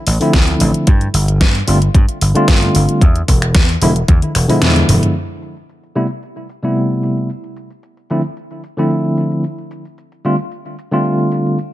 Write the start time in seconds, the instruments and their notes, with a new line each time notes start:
0.07 slap bass A1, open hi-hat
0.20 tine electric piano D3 F3 A3 C4 E4, muted slap bass stroke, open hi-hat
0.33 slap bass D2, kick, snare, closed hi-hat
0.48 closed hi-hat
0.60 slap bass A1, open hi-hat
0.74 closed hi-hat
0.87 slap bass G2, kick, closed hi-hat
1.01 closed hi-hat
1.14 slap bass G1, open hi-hat
1.28 closed hi-hat
1.41 slap bass G2, kick, snare, closed hi-hat
1.55 closed hi-hat
1.67 slap bass G1, tine electric piano D3 G3 A3 C4 F4, open hi-hat
1.82 closed hi-hat
1.95 slap bass G2, kick, closed hi-hat
2.09 closed hi-hat
2.21 slap bass G1, open hi-hat
2.34 tine electric piano D3 G3 A3 C4 F4, closed hi-hat
2.48 slap bass G2, kick, snare, closed hi-hat
2.62 closed hi-hat
2.75 slap bass G1, open hi-hat
2.89 closed hi-hat
3.01 slap bass E2, kick, closed hi-hat
3.16 closed hi-hat
3.28 slap bass E1, kick, open hi-hat
3.42 finger snap, closed hi-hat
3.55 slap bass E2, kick, snare, closed hi-hat
3.69 closed hi-hat
3.81 slap bass E1, tine electric piano D3 F3 G#3 B3 E4, open hi-hat
3.96 closed hi-hat
4.08 slap bass E2, kick, closed hi-hat, high tom
4.22 closed hi-hat, high tom
4.35 slap bass E1, finger snap, open hi-hat
4.48 tine electric piano D3 F3 G#3 B3 E4, muted slap bass stroke, open hi-hat, mid tom
4.62 slap bass E2, snare, closed hi-hat, mid tom
4.76 closed hi-hat
4.89 slap bass E1, mid tom, open hi-hat
5.03 closed hi-hat, mid tom
5.16 closed hi-hat, shaker
5.30 closed hi-hat, shaker
5.42 closed hi-hat, shaker
5.57 closed hi-hat, shaker
5.69 closed hi-hat, shaker
5.84 closed hi-hat, shaker
5.95 tine electric piano C3 G3 A3 B3 E4, closed hi-hat, shaker
6.10 closed hi-hat, shaker
6.23 closed hi-hat, shaker
6.37 closed hi-hat, shaker
6.49 closed hi-hat, shaker
6.62 tine electric piano C3 G3 A3 B3 E4, closed hi-hat, shaker
6.76 closed hi-hat, shaker
6.91 closed hi-hat, shaker
7.03 closed hi-hat, shaker
7.17 closed hi-hat, shaker
7.30 closed hi-hat, shaker
7.44 closed hi-hat, shaker
7.56 closed hi-hat, shaker
7.70 closed hi-hat, shaker
7.83 closed hi-hat, shaker
7.97 closed hi-hat, shaker
8.10 tine electric piano D3 F3 A3 C4 E4, closed hi-hat, shaker
8.24 closed hi-hat, shaker
8.37 closed hi-hat, shaker
8.51 closed hi-hat, shaker
8.64 closed hi-hat, shaker
8.77 tine electric piano D3 F3 A3 C4 E4, closed hi-hat, shaker
8.90 closed hi-hat, shaker
9.05 closed hi-hat, shaker
9.17 closed hi-hat, shaker
9.31 closed hi-hat, shaker
9.44 closed hi-hat, shaker
9.58 closed hi-hat, shaker
9.71 closed hi-hat, shaker
9.85 closed hi-hat, shaker
9.98 closed hi-hat, shaker
10.12 closed hi-hat, shaker
10.25 tine electric piano D3 G3 A3 C4 F4, closed hi-hat, shaker
10.39 closed hi-hat, shaker
10.52 closed hi-hat, shaker
10.66 closed hi-hat, shaker
10.79 closed hi-hat, shaker
10.91 tine electric piano D3 G3 A3 C4 F4, closed hi-hat, shaker
11.05 closed hi-hat, shaker
11.19 closed hi-hat, shaker
11.32 closed hi-hat, shaker
11.46 closed hi-hat, shaker
11.59 closed hi-hat, shaker